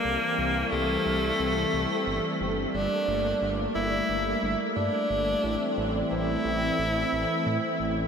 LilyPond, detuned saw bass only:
\new Staff \with { instrumentName = "Detuned saw bass" } { \clef bass \time 4/4 \key g \dorian \tempo 4 = 89 c,8 c,8 c,8 c,8 c,8 c,8 g,,8 g,,8 | g,,8 g,,8 g,,8 g,,8 g,,8 g,,8 g,8 g,,8 | a,,8 a,,8 a,,8 a,,8 a,,8 a,,8 a,8 a,,8 | }